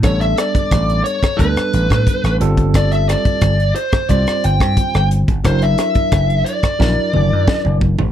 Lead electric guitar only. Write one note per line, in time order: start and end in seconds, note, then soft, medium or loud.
0.05 0.21 C#5 loud
0.21 0.38 E5 medium
0.38 1.04 D5 loud
1.04 1.40 C#5 medium
1.37 2.36 B4 medium
2.76 2.91 D5 medium
2.93 3.09 E5 medium
3.09 3.75 D5 medium
3.76 4.07 C5 medium
4.10 4.45 D5 medium
4.44 5.08 G5 loud
5.46 5.63 C5 medium
5.63 6.50 E5 loud
6.45 7.77 D5 medium